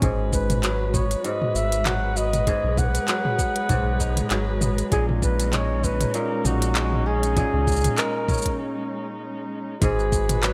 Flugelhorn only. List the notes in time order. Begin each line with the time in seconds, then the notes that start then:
0.33 B4
0.64 B4
0.94 C#5
1.25 D#5
1.55 E5
1.86 F#5
2.17 D#5
2.78 F#5
4.92 G#4
5.23 B4
5.54 C#5
5.84 B4
6.15 A#4
6.46 F#4
7.07 G#4
7.98 A#4
9.82 G#4
10.43 B4